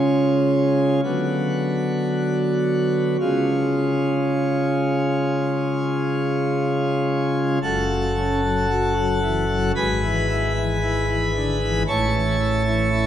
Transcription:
Already playing: C#3 G#3 C#4 F4
1.04 D3 F#3 B3 F#4
3.21 C#3 G#3 C#4 F4
7.63 F#1 F#2 A4 F#5 A5
7.89 F#3
8.17 C#4
8.43 F#3
8.70 F#4
8.96 F#3
9.22 E3
9.49 F#3
9.75 G#1 G#2 B4 G#5 B5
10.02 E3
10.29 E4
10.56 E3
10.83 E4
11.08 E3
11.35 D3
11.61 E3
11.88 A1 A2 C#5 A5 C#6
12.13 E3
12.40 E4
12.66 E3
12.92 E4

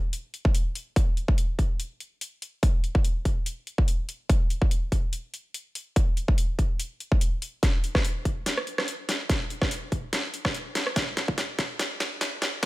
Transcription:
0.13 closed hi-hat
0.34 closed hi-hat
0.45 kick
0.55 closed hi-hat
0.75 open hi-hat
0.96 kick, closed hi-hat
1.17 closed hi-hat
1.28 kick
1.38 closed hi-hat
1.59 kick, open hi-hat
1.80 closed hi-hat
2.00 closed hi-hat
2.21 closed hi-hat
2.42 open hi-hat
2.63 kick, closed hi-hat
2.84 closed hi-hat
2.95 kick
3.05 closed hi-hat
3.25 kick, open hi-hat
3.46 closed hi-hat
3.67 closed hi-hat
3.78 kick
3.88 closed hi-hat
4.09 open hi-hat
4.29 kick, closed hi-hat
4.50 closed hi-hat
4.62 kick
4.71 closed hi-hat
4.92 kick, open hi-hat
5.13 closed hi-hat
5.34 closed hi-hat
5.54 closed hi-hat
5.75 open hi-hat
5.96 kick, closed hi-hat
6.17 closed hi-hat
6.28 kick
6.38 closed hi-hat
6.59 kick, open hi-hat
6.80 closed hi-hat
7.00 closed hi-hat
7.12 kick
7.21 closed hi-hat
7.42 open hi-hat
7.63 kick, snare, closed hi-hat
7.84 closed hi-hat
7.95 kick, cross-stick, snare
8.05 closed hi-hat
8.25 kick, open hi-hat
8.46 snare, closed hi-hat
8.57 cross-stick
8.67 closed hi-hat
8.78 cross-stick, snare
8.88 closed hi-hat
9.09 snare, open hi-hat
9.29 kick, snare, closed hi-hat
9.50 closed hi-hat
9.62 kick, cross-stick, snare
9.71 closed hi-hat
9.92 kick, open hi-hat
10.13 snare, closed hi-hat
10.34 closed hi-hat
10.45 kick, cross-stick, snare
10.54 closed hi-hat
10.75 snare, open hi-hat
10.87 cross-stick
10.96 kick, snare, closed hi-hat
11.17 snare, closed hi-hat
11.28 kick
11.38 snare, closed hi-hat
11.59 kick, snare, open hi-hat
11.79 snare, closed hi-hat
12.00 snare, closed hi-hat
12.21 snare, closed hi-hat
12.42 snare, open hi-hat

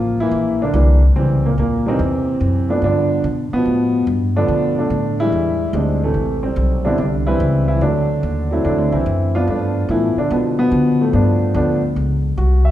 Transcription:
Already playing: A1 F3 A#3 F4
0.20 E3 A#3 E4
0.31 A#1
0.62 D3 A#3 D4
0.74 C2 E3 G3 A#3 D4
1.16 C#2 C3 E3 G3 C4
1.46 A#2 A#3
1.58 D#2 A#2 A#3
1.86 C3 E3 G3 A#3 C4 D#4
1.99 E2
2.41 F#2
2.69 F3 A3 B3 D4
2.82 G2 D3 B3 D4
2.86 F3
3.24 B2
3.53 B2 F3 B3, muted upright bass stroke
3.65 A2
4.07 G2
4.36 D3 F3 A3 B3 D4
4.48 B2
4.79 D3 A3 D4
4.90 A2
5.20 E3 G3 G#3 E4
5.32 E2
5.73 D2 G#2 G3 G#3 C4 D4
6.03 A2 C3 E3 A3
6.14 A1
6.43 C3 G3 C4
6.56 B1
6.85 D3 G3 B3 C4 D4 E4
6.98 C2 D3 G3 D4
7.27 E3 G3 C4 E4 B4
7.40 C#2
7.68 E3 E4
7.81 D2 D3 F#3 A3 D4
8.23 D#2
8.51 F#3 A3 C4 E4
8.65 E2 D3 F#3 A3 D4
8.78 D2
8.92 C2 E3 C4 E4
9.06 F#2
9.35 F3 B3 D4 F4
9.48 G2 F3 A3 B3 D4
9.89 A2 E3 F3 A3 B3 E4
10.17 D3 D4, muted upright bass stroke
10.31 B2 D3 F3 B3
10.59 B2 F3 B3
10.71 D3
11.01 A2 F3 A3
11.13 G2 F3 A3 B3 D4
11.54 D2 F3 A3 B3 D4
11.96 C#2
12.37 C2 F#4
12.65 E5

